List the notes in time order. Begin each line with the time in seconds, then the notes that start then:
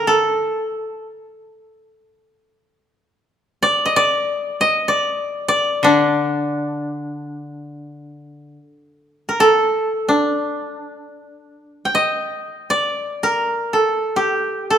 Already playing: D3 D#4 A#4
0.07 A4
3.63 D5
3.86 D#5
3.96 D5
4.61 D#5
4.88 D5
5.48 D5
5.83 D3 D4
9.29 A#4
9.40 A4
10.09 D4
11.85 G5
11.95 D#5
12.70 D5
13.23 A#4
13.73 A4
14.16 G4
14.70 A4